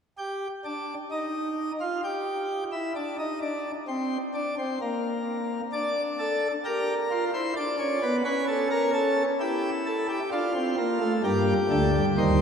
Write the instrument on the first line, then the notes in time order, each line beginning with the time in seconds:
pipe organ
0.18 G4
0.65 D4
1.12 D#4
1.81 F4
2.04 G4
2.72 E4
2.96 D4
3.19 D#4
3.42 D4
3.88 C4
4.34 D4
4.59 C4
4.82 A#3
5.73 D4 D5
6.19 A4
6.65 G4 A#4
7.11 F4
7.34 E4 C5
7.57 D4 D5
7.79 C#4
8.02 B3
8.25 C#4 B4
8.48 A4
8.71 A#4
8.94 A4
9.40 E4 G4
9.86 A4
10.09 G4
10.32 D4 F4
10.55 C4
10.78 A#3
11.01 A3
11.24 G2 G3 A#3 G4
11.70 D2 D3 A3
11.95 G3
12.18 D#2 D#3 C5